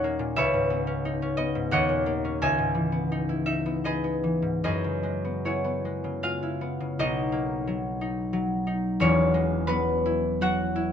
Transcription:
0.00 0.38 D#2 medium
0.00 0.18 A#2 medium
0.00 0.39 A#3 medium
0.00 0.86 C#4 medium
0.00 1.04 D#4 medium
0.00 0.38 A#4 medium
0.00 0.37 C#5 medium
0.00 1.36 D#5 medium
0.00 0.38 F#5 loud
0.19 0.39 A#2 medium
0.36 1.77 C#2 medium
0.36 1.78 B4 medium
0.36 1.72 C#5 medium
0.36 1.77 E5 loud
0.53 1.54 G#2 medium
0.70 1.37 B3 medium
0.87 1.21 C#4 medium
1.05 3.10 D#4 medium
1.22 2.23 C#4 medium
1.37 1.76 B3 medium
1.37 1.72 D#5 loud
1.55 1.76 G#2 medium
1.71 2.45 D#2 medium
1.71 5.44 C#5 medium
1.71 2.42 D#5 medium
1.71 2.45 F#5 loud
1.89 2.45 A#2 medium
2.06 2.45 A#3 medium
2.25 6.15 C#4 medium
2.42 4.68 C#2 medium
2.42 3.83 D#5 medium
2.42 3.45 E5 medium
2.42 6.32 G#5 loud
2.58 4.41 G#2 medium
2.75 4.22 E3 soft
2.92 3.64 B3 medium
3.12 3.45 D#4 medium
3.29 5.44 E4 medium
3.46 3.83 D#4 medium
3.46 7.01 E5 medium
3.66 4.03 B3 soft
3.84 4.67 D#4 medium
3.84 4.64 G#4 medium
3.84 4.64 B4 medium
3.84 4.63 D#5 medium
4.04 5.23 B3 soft
4.24 4.68 E3 medium
4.42 4.67 G#2 soft
4.64 7.02 F#2 medium
4.64 5.45 G#4 medium
4.64 8.55 B4 medium
4.64 6.98 D#5 medium
4.84 6.03 C#3 soft
5.03 5.84 G#3 soft
5.25 5.63 B3 soft
5.45 6.41 E4 soft
5.45 9.37 F#4 soft
5.45 7.03 G#4 soft
5.45 7.03 C#5 medium
5.64 6.60 B3 soft
5.85 6.22 G#3 soft
6.04 6.79 C#3 soft
6.23 7.02 G#3 soft
6.23 7.03 F4 medium
6.23 7.02 F5 medium
6.43 7.02 E4 soft
6.61 9.68 B3 soft
6.80 7.02 C#3 soft
6.99 9.04 B1 medium
6.99 8.00 D#4 medium
6.99 9.05 D#5 loud
7.32 9.04 A#3 medium
7.67 8.32 F#3 medium
8.01 8.66 D#4 medium
8.33 9.66 F#3 medium
8.67 9.04 D#4 medium
9.00 10.92 E1 medium
9.00 10.92 E2 medium
9.00 10.92 C#4 medium
9.00 10.20 C#5 loud
9.34 10.92 G#3 medium
9.67 10.40 F#3 medium
9.67 10.92 B3 medium
9.67 10.92 B4 loud
10.06 10.74 E4 medium
10.41 10.92 F#3 medium
10.41 10.92 F#4 medium
10.41 10.92 F#5 loud
10.76 10.92 E4 medium

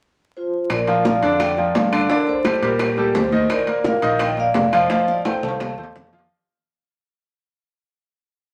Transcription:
0.37 0.69 F4 medium
0.37 0.69 C5 medium
0.70 1.19 A#1 medium
0.70 1.04 A#4 medium
0.70 1.06 D5 medium
0.70 high bongo medium
0.70 high conga soft
0.70 high timbale medium
0.70 claves medium
0.88 1.02 F3 medium
0.88 1.02 F4 medium
0.88 1.02 A#4 medium
0.88 high bongo soft
0.88 high conga soft
0.88 high timbale medium
1.05 1.19 F3 medium
1.05 1.20 F4 medium
1.05 1.20 A#4 medium
1.05 1.39 D5 medium
1.05 1.38 F5 medium
1.05 high bongo medium
1.05 high conga medium
1.05 low timbale medium
1.22 1.71 F2 medium
1.22 1.51 D3 medium
1.22 1.52 D4 medium
1.22 1.52 D5 medium
1.22 high conga soft
1.22 high timbale medium
1.40 1.74 D5 medium
1.40 1.74 G5 medium
1.40 high bongo medium
1.40 high conga soft
1.40 high timbale medium
1.40 claves medium
1.57 1.86 F3 medium
1.57 1.87 F4 medium
1.57 1.87 A#4 medium
1.57 high bongo soft
1.57 high conga soft
1.75 2.06 G2 medium
1.75 2.09 D5 medium
1.75 2.12 F5 medium
1.75 high bongo medium
1.75 low bongo medium
1.75 high conga medium
1.75 high timbale medium
1.75 low timbale medium
1.92 2.07 D3 medium
1.92 2.07 D4 medium
1.92 2.07 D5 medium
1.92 high bongo soft
1.92 high timbale medium
1.92 claves medium
2.10 2.39 D3 medium
2.10 2.39 D4 medium
2.10 2.20 A#4 medium
2.10 2.39 D5 medium
2.10 2.19 D5 medium
2.10 high bongo medium
2.10 high conga soft
2.27 2.61 A4 medium
2.27 2.64 C5 medium
2.27 high bongo soft
2.27 high conga soft
2.45 2.59 G3 medium
2.45 2.60 G4 medium
2.45 2.60 A4 medium
2.45 high bongo medium
2.45 high conga medium
2.45 high timbale medium
2.45 low timbale medium
2.45 claves medium
2.62 3.11 A#2 medium
2.62 2.91 G3 medium
2.62 2.92 G4 medium
2.62 3.13 G4 medium
2.62 2.92 A#4 medium
2.62 3.12 A#4 medium
2.62 high timbale medium
2.79 high bongo medium
2.79 high conga soft
2.79 high timbale medium
2.79 claves medium
2.97 3.27 G3 medium
2.97 3.27 G4 medium
2.97 3.27 A4 medium
2.97 high bongo soft
2.97 high conga soft
3.15 3.46 D#2 medium
3.15 3.49 A4 medium
3.15 3.52 C5 medium
3.15 high bongo medium
3.15 low bongo medium
3.15 high conga medium
3.15 high timbale medium
3.15 low timbale medium
3.32 3.61 D#3 medium
3.32 3.61 D#4 medium
3.32 3.61 D#5 medium
3.32 high bongo soft
3.32 high conga medium
3.50 3.84 A#4 medium
3.50 3.83 D5 medium
3.50 high bongo medium
3.50 high conga soft
3.50 high timbale medium
3.50 claves medium
3.67 3.82 A#3 medium
3.67 3.82 A#4 medium
3.67 high bongo soft
3.67 high conga soft
3.67 high timbale medium
3.84 3.99 A#3 medium
3.84 4.00 A#4 medium
3.84 4.19 A#4 medium
3.84 4.22 F5 loud
3.84 high bongo medium
3.84 high conga medium
3.84 low timbale medium
4.02 4.52 A#1 medium
4.02 4.31 D#3 medium
4.02 4.32 D#4 medium
4.02 4.32 D#5 medium
4.02 high conga soft
4.02 high timbale medium
4.19 4.38 D#5 medium
4.19 4.38 G5 medium
4.19 high bongo medium
4.19 high conga soft
4.19 high timbale medium
4.19 claves medium
4.37 4.66 A#3 medium
4.37 4.67 A#4 medium
4.37 4.72 D5 medium
4.37 4.75 F5 loud
4.37 high bongo soft
4.37 high conga soft
4.54 4.86 F1 medium
4.54 high bongo medium
4.54 low bongo medium
4.54 high conga medium
4.54 high timbale medium
4.54 low timbale medium
4.72 4.87 F3 medium
4.72 4.88 F4 medium
4.72 5.07 C5 medium
4.72 5.10 D#5 medium
4.72 4.88 F5 medium
4.72 high bongo soft
4.72 high conga medium
4.72 high timbale medium
4.72 claves medium
4.90 5.19 F3 medium
4.90 5.20 F4 medium
4.90 5.20 F5 medium
4.90 high bongo medium
4.90 high conga medium
5.08 5.25 D5 medium
5.08 5.27 F5 medium
5.08 high bongo soft
5.08 high conga medium
5.25 5.40 A3 medium
5.25 5.40 A4 medium
5.25 5.40 C5 medium
5.25 5.34 C5 medium
5.25 5.34 G5 loud
5.25 high bongo medium
5.25 high conga medium
5.25 high timbale loud
5.25 claves medium
5.43 5.75 C2 medium
5.43 5.72 A3 medium
5.43 5.72 A4 medium
5.43 5.72 C5 medium
5.43 6.10 F5 medium
5.43 6.10 A5 medium
5.43 low conga loud
5.48 high timbale medium
5.60 high bongo medium
5.60 low conga medium
5.60 low timbale medium
5.60 claves medium
5.77 5.94 D#2 medium
5.77 6.06 A3 medium
5.77 6.07 A4 medium
5.77 6.07 C5 medium
5.77 high bongo soft
5.77 low conga medium
5.83 low timbale medium
5.95 6.27 F2 medium
5.95 high bongo medium
5.95 low bongo medium
5.95 low conga medium
6.07 low timbale medium
6.12 6.27 F3 medium
6.12 6.27 F4 medium
6.12 6.27 F5 medium
6.12 high bongo soft
6.12 low conga medium
6.19 low timbale medium

